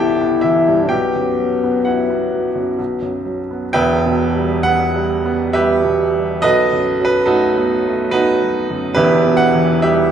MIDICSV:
0, 0, Header, 1, 3, 480
1, 0, Start_track
1, 0, Key_signature, 1, "minor"
1, 0, Tempo, 950872
1, 461, Time_signature, 3, 2, 24, 8
1, 945, Tempo, 917431
1, 2865, Tempo, 860832
1, 5415, End_track
2, 0, Start_track
2, 0, Title_t, "French horn"
2, 0, Program_c, 0, 60
2, 0, Note_on_c, 0, 64, 62
2, 446, Note_on_c, 0, 59, 62
2, 454, Note_off_c, 0, 64, 0
2, 1661, Note_off_c, 0, 59, 0
2, 5415, End_track
3, 0, Start_track
3, 0, Title_t, "Grand piano"
3, 0, Program_c, 1, 0
3, 0, Control_c, 1, 64, 127
3, 0, Note_on_c, 1, 36, 73
3, 0, Note_on_c, 1, 43, 46
3, 0, Note_on_c, 1, 52, 48
3, 0, Note_on_c, 1, 59, 42
3, 0, Note_on_c, 1, 64, 49
3, 0, Note_on_c, 1, 67, 61
3, 0, Note_on_c, 1, 69, 70
3, 0, Note_on_c, 1, 79, 81
3, 0, Note_on_c, 1, 81, 88
3, 58, Note_off_c, 1, 59, 0
3, 105, Note_on_c, 1, 59, 45
3, 174, Note_off_c, 1, 64, 0
3, 203, Note_off_c, 1, 67, 0
3, 209, Note_on_c, 1, 76, 73
3, 215, Note_on_c, 1, 64, 55
3, 217, Note_off_c, 1, 79, 0
3, 223, Note_off_c, 1, 52, 0
3, 223, Note_on_c, 1, 52, 46
3, 292, Note_off_c, 1, 59, 0
3, 345, Note_off_c, 1, 43, 0
3, 345, Note_on_c, 1, 43, 44
3, 414, Note_off_c, 1, 52, 0
3, 442, Note_off_c, 1, 36, 0
3, 442, Note_off_c, 1, 64, 0
3, 448, Note_on_c, 1, 79, 84
3, 454, Note_on_c, 1, 67, 65
3, 456, Note_off_c, 1, 76, 0
3, 460, Note_on_c, 1, 35, 59
3, 464, Note_off_c, 1, 43, 0
3, 469, Control_c, 1, 64, 0
3, 470, Note_off_c, 1, 69, 0
3, 472, Note_off_c, 1, 81, 0
3, 556, Control_c, 1, 64, 127
3, 583, Note_on_c, 1, 42, 41
3, 701, Note_on_c, 1, 54, 42
3, 778, Note_off_c, 1, 42, 0
3, 825, Note_on_c, 1, 59, 45
3, 895, Note_off_c, 1, 54, 0
3, 921, Note_off_c, 1, 67, 0
3, 933, Note_on_c, 1, 78, 59
3, 937, Note_on_c, 1, 66, 43
3, 938, Note_off_c, 1, 79, 0
3, 942, Note_on_c, 1, 64, 44
3, 1017, Note_off_c, 1, 59, 0
3, 1064, Note_on_c, 1, 59, 44
3, 1137, Note_off_c, 1, 64, 0
3, 1186, Note_on_c, 1, 54, 42
3, 1257, Note_off_c, 1, 59, 0
3, 1301, Note_on_c, 1, 42, 40
3, 1377, Note_off_c, 1, 54, 0
3, 1399, Note_off_c, 1, 66, 0
3, 1403, Note_off_c, 1, 35, 0
3, 1418, Note_off_c, 1, 78, 0
3, 1422, Note_off_c, 1, 42, 0
3, 1424, Note_on_c, 1, 35, 47
3, 1432, Control_c, 1, 64, 0
3, 1520, Control_c, 1, 64, 127
3, 1545, Note_on_c, 1, 42, 41
3, 1667, Note_on_c, 1, 54, 43
3, 1743, Note_off_c, 1, 42, 0
3, 1801, Note_on_c, 1, 59, 39
3, 1866, Note_off_c, 1, 54, 0
3, 1901, Note_off_c, 1, 35, 0
3, 1917, Note_on_c, 1, 79, 108
3, 1920, Note_off_c, 1, 59, 0
3, 1922, Note_on_c, 1, 71, 90
3, 1923, Control_c, 1, 64, 0
3, 1923, Note_on_c, 1, 28, 74
3, 1924, Note_on_c, 1, 76, 86
3, 1928, Note_on_c, 1, 40, 71
3, 2018, Control_c, 1, 64, 127
3, 2090, Note_on_c, 1, 47, 56
3, 2243, Note_on_c, 1, 55, 54
3, 2337, Note_off_c, 1, 47, 0
3, 2376, Note_off_c, 1, 71, 0
3, 2377, Note_off_c, 1, 76, 0
3, 2389, Note_on_c, 1, 78, 102
3, 2394, Note_off_c, 1, 79, 0
3, 2402, Note_on_c, 1, 59, 60
3, 2491, Note_off_c, 1, 55, 0
3, 2560, Note_on_c, 1, 55, 58
3, 2650, Note_off_c, 1, 59, 0
3, 2714, Note_on_c, 1, 59, 60
3, 2807, Note_off_c, 1, 55, 0
3, 2861, Note_on_c, 1, 76, 97
3, 2863, Note_off_c, 1, 78, 0
3, 2866, Note_on_c, 1, 71, 73
3, 2870, Note_on_c, 1, 67, 77
3, 2872, Note_on_c, 1, 55, 53
3, 2967, Note_off_c, 1, 59, 0
3, 3032, Note_on_c, 1, 47, 56
3, 3130, Note_off_c, 1, 55, 0
3, 3200, Note_on_c, 1, 55, 49
3, 3289, Note_off_c, 1, 47, 0
3, 3330, Note_off_c, 1, 71, 0
3, 3332, Note_off_c, 1, 67, 0
3, 3333, Note_off_c, 1, 28, 0
3, 3336, Note_off_c, 1, 40, 0
3, 3350, Note_off_c, 1, 76, 0
3, 3354, Note_on_c, 1, 75, 107
3, 3356, Note_off_c, 1, 55, 0
3, 3357, Note_on_c, 1, 71, 82
3, 3359, Note_on_c, 1, 69, 77
3, 3361, Control_c, 1, 64, 0
3, 3366, Note_on_c, 1, 35, 73
3, 3448, Control_c, 1, 64, 127
3, 3526, Note_on_c, 1, 42, 55
3, 3679, Note_on_c, 1, 54, 56
3, 3692, Note_off_c, 1, 71, 0
3, 3693, Note_off_c, 1, 69, 0
3, 3704, Note_on_c, 1, 71, 96
3, 3713, Note_off_c, 1, 75, 0
3, 3775, Note_off_c, 1, 42, 0
3, 3821, Note_on_c, 1, 69, 95
3, 3826, Note_on_c, 1, 66, 74
3, 3827, Note_on_c, 1, 63, 77
3, 3829, Note_off_c, 1, 71, 0
3, 3835, Note_on_c, 1, 57, 57
3, 3933, Note_off_c, 1, 54, 0
3, 3997, Note_on_c, 1, 59, 56
3, 4091, Note_off_c, 1, 57, 0
3, 4166, Note_on_c, 1, 57, 60
3, 4251, Note_off_c, 1, 59, 0
3, 4288, Note_off_c, 1, 63, 0
3, 4288, Note_off_c, 1, 66, 0
3, 4299, Note_on_c, 1, 71, 101
3, 4306, Note_on_c, 1, 66, 74
3, 4308, Note_off_c, 1, 69, 0
3, 4308, Note_on_c, 1, 63, 72
3, 4314, Note_on_c, 1, 59, 56
3, 4415, Note_off_c, 1, 57, 0
3, 4475, Note_on_c, 1, 54, 57
3, 4568, Note_off_c, 1, 59, 0
3, 4630, Note_on_c, 1, 42, 52
3, 4726, Note_off_c, 1, 54, 0
3, 4754, Note_off_c, 1, 71, 0
3, 4761, Note_off_c, 1, 66, 0
3, 4762, Note_off_c, 1, 63, 0
3, 4763, Note_on_c, 1, 71, 105
3, 4771, Note_on_c, 1, 67, 78
3, 4772, Note_off_c, 1, 35, 0
3, 4772, Note_on_c, 1, 28, 72
3, 4772, Note_on_c, 1, 64, 77
3, 4779, Note_on_c, 1, 40, 73
3, 4787, Note_off_c, 1, 42, 0
3, 4797, Control_c, 1, 64, 0
3, 4892, Control_c, 1, 64, 127
3, 4941, Note_on_c, 1, 47, 54
3, 4999, Note_on_c, 1, 78, 103
3, 5000, Note_off_c, 1, 64, 0
3, 5000, Note_off_c, 1, 67, 0
3, 5013, Note_off_c, 1, 71, 0
3, 5100, Note_on_c, 1, 52, 56
3, 5199, Note_off_c, 1, 47, 0
3, 5252, Note_off_c, 1, 78, 0
3, 5252, Note_on_c, 1, 76, 94
3, 5256, Note_on_c, 1, 71, 67
3, 5258, Note_on_c, 1, 67, 72
3, 5264, Note_on_c, 1, 55, 56
3, 5358, Note_off_c, 1, 52, 0
3, 5415, Note_off_c, 1, 28, 0
3, 5415, Note_off_c, 1, 40, 0
3, 5415, Note_off_c, 1, 55, 0
3, 5415, Note_off_c, 1, 67, 0
3, 5415, Note_off_c, 1, 71, 0
3, 5415, Note_off_c, 1, 76, 0
3, 5415, End_track
0, 0, End_of_file